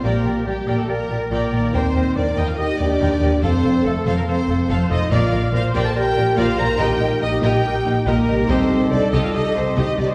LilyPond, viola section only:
\new Staff \with { instrumentName = "Viola section" } { \time 4/4 \key ees \lydian \tempo 4 = 142 g'2 bes'4 d''4 | c''4 bes'4 g'2 | a'2. c''4 | d''4 c''4 bes'4 c''4 |
bes'4 g'4 ees'4 g'4 | a'2. g'4 | }